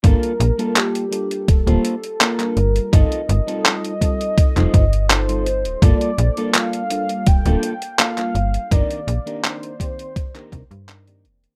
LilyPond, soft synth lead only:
\new Staff \with { instrumentName = "Soft synth lead" } { \time 4/4 \key g \minor \tempo 4 = 83 bes'4 g'4 a'4 bes'4 | ees''2. c''4 | d''4 f''4 g''4 f''4 | d''4 c''2~ c''8 r8 | }